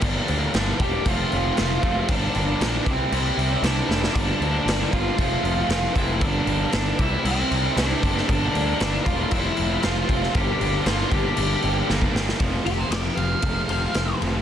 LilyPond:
<<
  \new Staff \with { instrumentName = "Lead electric guitar" } { \time 4/4 \key g \dorian \tempo 4 = 116 r4. <g' g''>8 <f' f''>2 | <d' d''>4. <c' c''>4. <d' d''>4 | <d' d''>4. <f' f''>2 <e' e''>8 | <d' d''>4. <e' e''>8 <c' c''>4 <d' d''>4 |
<d' d''>4. <f' f''>8 <e' e''>4 <f' f''>4 | <g' g''>4 <f' f''>8 <g' g''>4. r4 | r8 g'16 c''16 d''16 g''16 f''2 r8 | }
  \new Staff \with { instrumentName = "Clean electric guitar" } { \time 4/4 \key g \dorian r1 | r1 | r1 | r1 |
r1 | r1 | r8 <f a c' f'>8 <f a c' f'>8 r4 <f a c' f'>8 <f a c' f'>8 r8 | }
  \new Staff \with { instrumentName = "Distorted electric guitar" } { \clef bass \time 4/4 \key g \dorian <g, d g bes d'>8 <g bes d'>8 <d g bes d'>8 <g bes d'>8 <f, c f a c'>4 <c f a c'>8 <f a c'>8 | <g, d g bes d'>8 <g bes d'>8 <d g bes d'>8 <c g c' e'>8 <c g c' e'>4 <c g c' e'>8 <g c' e'>8 | <g, d g bes d'>8 <g bes d'>8 <d g bes d'>8 <g bes d'>8 <f, c f a c'>4 <c f a c'>8 <f a c'>8 | <g, d g bes d'>8 <g bes d'>8 <d g bes d'>8 <c g c' e'>8 <c g c' e'>4 <c g c' e'>8 <g c' e'>8 |
<g, d g bes d'>8 <g bes d'>8 <d g bes d'>8 <g bes d'>8 <f, c f a c'>4 <c f a c'>8 <f a c'>8 | <g, d g bes d'>8 <g bes d'>8 <d g bes d'>8 <g, d g bes d'>8 <g, d g bes d'>4 <d g bes d'>8 <g bes d'>8 | <f, c f>2 <f, c f>2 | }
  \new Staff \with { instrumentName = "Picked electric bass" } { \clef bass \time 4/4 \key g \dorian g,,8 d,8 g,,8 e,,8 f,,8 f,,8 f,,8 f,,8 | g,,8 g,,8 bes,,8 c,8 c,8 c,8 c,8 f,,8 | g,,8 d,8 g,,8 g,,8 f,,8 f,,8 f,,8 f,,8 | g,,8 g,,8 g,,8 c,8 c,8 c,8 c,8 fis,,8 |
g,,8 d,8 g,,8 e,,8 f,,8 f,,8 f,,8 f,,8 | g,,8 g,,8 g,,8 g,,8 g,,8 g,,8 g,,8 g,,8 | f,,8 f,,8 f,,8 f,,8 f,,8 f,,8 f,,8 f,,8 | }
  \new DrumStaff \with { instrumentName = "Drums" } \drummode { \time 4/4 <cymc bd>8 cymc8 <cymc sn>8 <cymc bd>8 <cymc bd>8 cymc8 <cymc sn>8 <cymc bd>8 | <cymc bd>8 cymc8 <cymc sn>8 <cymc bd>8 cymc8 cymc8 <cymc sn>8 sn16 sn16 | <cymc bd>8 cymc8 <cymc sn>8 <cymc bd>8 <cymc bd>8 cymc8 <cymc sn>8 <cymc bd>8 | <cymc bd>8 cymc8 <cymc sn>8 <cymc bd>8 cymc8 cymc8 <cymc sn>8 <cymc bd>16 sn16 |
<cymc bd>8 cymc8 <cymc sn>8 <cymc bd>8 <cymc bd>8 cymc8 <cymc sn>8 <cymc bd>16 sn16 | <cymc bd>8 cymc8 <cymc sn>8 <cymc bd>8 cymc8 cymc8 sn16 bd16 sn16 sn16 | <bd cymr>8 cymr8 <cymr sn>8 cymr8 <bd cymr>8 cymr8 <cymr sn>8 cymr8 | }
>>